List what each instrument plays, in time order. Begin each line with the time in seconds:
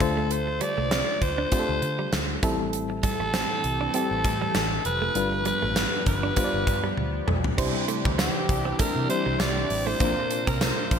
Already playing: alto saxophone A4
0.00 fingered electric bass D2, fm electric piano D3 A3 D4 F4 C5, kick, closed hi-hat
0.17 clean electric guitar A3
0.31 alto saxophone C5, closed hi-hat
0.47 muted clean electric guitar stroke
0.61 clean electric guitar G3, alto saxophone D5, closed hi-hat
0.78 fingered electric bass C2, clean electric guitar A3
0.91 clean electric guitar C4, snare, closed hi-hat
1.21 fingered electric bass D2, alto saxophone C5, muted clean electric guitar stroke, kick, closed hi-hat
1.38 clean electric guitar D4
1.51 fm electric piano A3 D4 F4 G4, clean electric guitar C4, kick, closed hi-hat
1.59 fm electric piano A4
1.69 fingered electric bass D2
1.82 fingered electric bass D3, muted clean electric guitar stroke, closed hi-hat
1.99 clean electric guitar G3
2.13 fingered electric bass D2, snare, closed hi-hat
2.42 fingered electric bass A1, fm electric piano A2 G3 C4 E4 A4, clean electric guitar A3, kick, closed hi-hat
2.73 analog synth pad E3 A3 C4 G4, closed hi-hat
2.90 muted clean electric guitar stroke
3.03 clean electric guitar G3, alto saxophone A4, kick, closed hi-hat
3.20 fingered electric bass A1, clean electric guitar A3
3.34 clean electric guitar C4, snare, closed hi-hat, tambourine
3.64 fingered electric bass C2, muted clean electric guitar stroke, closed hi-hat
3.81 clean electric guitar D4
3.94 fm electric piano G3 C4 E4 G4, clean electric guitar C4, alto saxophone A4, closed hi-hat
4.11 fingered electric bass A1
4.24 fingered electric bass A2, muted clean electric guitar stroke, kick, closed hi-hat
4.42 clean electric guitar G3
4.55 fingered electric bass A1, clean electric guitar A3, snare, closed hi-hat, tambourine
4.71 muted clean electric guitar stroke
4.85 fingered electric bass F1, alto saxophone B4, closed hi-hat
5.02 clean electric guitar A3
5.15 fingered electric bass G1, fm electric piano G2 G3 D4 F4 B4, analog synth pad F3 B3 D4 G4, closed hi-hat
5.32 muted clean electric guitar stroke
5.45 clean electric guitar G3, alto saxophone B4, closed hi-hat
5.62 fingered electric bass A1, clean electric guitar A3
5.76 clean electric guitar B3, snare, closed hi-hat, tambourine
6.06 fingered electric bass G1, alto saxophone B4, muted clean electric guitar stroke, kick, closed hi-hat
6.23 clean electric guitar D4
6.36 fm electric piano G3 D4 F4 C5, clean electric guitar B3, kick, closed hi-hat
6.44 fm electric piano D5
6.54 fingered electric bass G1
6.67 fingered electric bass G2, muted clean electric guitar stroke, kick, closed hi-hat
6.84 clean electric guitar G3
6.97 fingered electric bass D2, high tom
7.28 fingered electric bass B1, clean electric guitar A3, mid tom
7.44 floor tom
7.58 fingered electric bass C2, fm electric piano C3 G3 C4 D4 E4 C5, analog synth pad E3 C4 D4 G4, clean electric guitar C4, analog polysynth D4 E4 G4, kick, crash
7.75 muted clean electric guitar stroke
7.88 clean electric guitar A3, closed hi-hat
8.05 fingered electric bass D2, kick
8.19 clean electric guitar G3, alto saxophone G4, snare, closed hi-hat, tambourine
8.35 muted clean electric guitar stroke
8.49 fingered electric bass C2, kick, closed hi-hat
8.65 clean electric guitar C4
8.79 clean electric guitar A3, alto saxophone A#4, muted fingered electric bass stroke, kick, closed hi-hat
8.96 fingered electric bass C3, muted clean electric guitar stroke
9.09 fm electric piano G3 C4 D4 E4 C5, alto saxophone C5, closed hi-hat
9.26 fingered electric bass C2, clean electric guitar G3
9.39 fingered electric bass C2, clean electric guitar G3, alto saxophone D5, snare, closed hi-hat, tambourine
9.56 muted clean electric guitar stroke
9.70 fingered electric bass A1, open hi-hat
9.86 clean electric guitar A3, alto saxophone C5
10.00 fingered electric bass A#1, fm electric piano A#2 A#3 C4 D4 F4 C5, analog synth pad C3 A#3 F4, clean electric guitar A#3, analog polysynth D4 F4 A#4, kick, closed hi-hat
10.31 muted clean electric guitar stroke, closed hi-hat
10.47 fingered electric bass C2, clean electric guitar C4, alto saxophone A#4, kick, closed hi-hat
10.61 clean electric guitar A#3, alto saxophone C5, snare, closed hi-hat, tambourine
10.91 fingered electric bass A#1, muted clean electric guitar stroke, kick, closed hi-hat